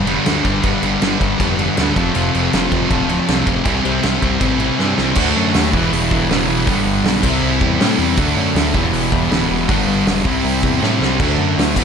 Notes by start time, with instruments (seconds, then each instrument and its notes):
Already playing: analog synth bass F1
0.06 distorted electric guitar G2 D3 G3 B3 D4, crash
0.25 analog synth bass D2, distorted electric guitar G2 D3 G3 B3 D4, snare, crash
0.43 analog synth bass G1, distorted electric guitar G2 D3 G3, kick, crash
0.63 analog synth bass G1, distorted electric guitar G2 D3 G3 B3 D4, kick, crash
0.83 analog synth bass G1, distorted electric guitar G2 D3 G3, crash
1.01 analog synth bass G1, distorted electric guitar G2 D3 G3, snare, crash
1.20 analog synth bass G1, distorted electric guitar G2 D3 G3, kick, crash
1.39 analog synth bass F1, distorted electric guitar G2 D3 G3, kick, crash
1.57 distorted electric guitar G2 D3 G3 B3 D4, crash
1.76 analog synth bass D2, distorted electric guitar G2 D3 G3 B3 D4, snare, crash
1.96 analog synth bass F1, distorted electric guitar F2 C3 F3 A3 C4, kick, crash
2.00 distorted electric guitar F4
2.13 analog synth bass F1, distorted electric guitar F2 C3 F3, crash
2.33 analog synth bass F1, distorted electric guitar F2 C3 F3, crash
2.53 analog synth bass F1, distorted electric guitar F2 C3 F3, snare, crash
2.71 analog synth bass F1, distorted electric guitar F2 C3 F3, kick, crash
2.89 analog synth bass D1, distorted electric guitar F2 C3 F3 A3 C4 F4, kick, crash
3.08 distorted electric guitar F2 C3 F3 A3 C4 F4, crash
3.27 analog synth bass C2, distorted electric guitar F2 C3 F3, snare, crash
3.45 analog synth bass F1, distorted electric guitar F2 C3 F3, kick, crash
3.65 analog synth bass C2, distorted electric guitar C3 E3 G3 C4 E4, kick, crash
3.84 analog synth bass C2, distorted electric guitar C3 G3 C4, crash
4.03 analog synth bass C2, distorted electric guitar C3 G3 C4, snare, crash
4.21 analog synth bass C2, distorted electric guitar C3 G3 C4, kick, crash
4.40 analog synth bass A1, distorted electric guitar C3 G3 C4, kick, crash
4.58 distorted electric guitar C3 E3 G3 C4 E4, crash
4.78 analog synth bass G2, distorted electric guitar C3 E3 G3 C4 E4, snare
4.97 analog synth bass C2, distorted electric guitar C3 G3 C4, snare
5.15 analog synth bass D2, distorted electric guitar D3 F#3 A3 F#4, kick, crash
5.20 distorted electric guitar D4
5.36 analog synth bass F#2
5.54 analog synth bass D#2, snare, open hi-hat
5.72 analog synth bass E1, distorted electric guitar E2 B2 E3 G3 B3 E4, kick
5.93 analog synth bass E1, open hi-hat
6.11 analog synth bass E1, kick
6.29 analog synth bass D1, distorted electric guitar E2 B2 E3, snare, open hi-hat
6.49 analog synth bass E1
6.65 analog synth bass G1, distorted electric guitar G2 D3 G3 B3 D4, kick, open hi-hat
6.86 analog synth bass G1
7.04 analog synth bass B1, snare, open hi-hat
7.22 analog synth bass C2, distorted electric guitar C3 G3 C4 E4, kick, crash
7.26 distorted electric guitar C3
7.43 analog synth bass C2
7.61 analog synth bass E2, kick
7.78 analog synth bass A2, distorted electric guitar C3 G3 C4, snare, open hi-hat
7.99 analog synth bass E2
8.16 analog synth bass D2, distorted electric guitar D3 F#3 A3, kick, open hi-hat
8.20 distorted electric guitar D4
8.37 analog synth bass F#2
8.55 analog synth bass D2, snare, open hi-hat
8.73 analog synth bass E1, distorted electric guitar E2 B2 E3 G3 B3 E4, kick
8.93 analog synth bass E1, open hi-hat
9.12 analog synth bass E1, kick
9.30 analog synth bass D1, distorted electric guitar E2 B2, snare, open hi-hat
9.34 distorted electric guitar E3
9.51 analog synth bass E1
9.68 analog synth bass G1, distorted electric guitar G2 D3 G3 B3 D4, kick, open hi-hat
9.72 distorted electric guitar G3
9.88 analog synth bass G1
10.07 analog synth bass E1, snare, open hi-hat
10.23 analog synth bass C2, distorted electric guitar C3 G3 C4 E4, kick
10.44 analog synth bass C2, open hi-hat
10.63 analog synth bass E2, kick
10.81 analog synth bass A2, distorted electric guitar C3 G3 C4, snare
11.01 analog synth bass C2, snare
11.19 analog synth bass D2, distorted electric guitar D3 F#3 A3 D4, kick, crash
11.38 analog synth bass F#2
11.58 analog synth bass D2, snare, open hi-hat
11.76 analog synth bass E1, distorted electric guitar E2 B2 E3 G3 B3 E4, kick, crash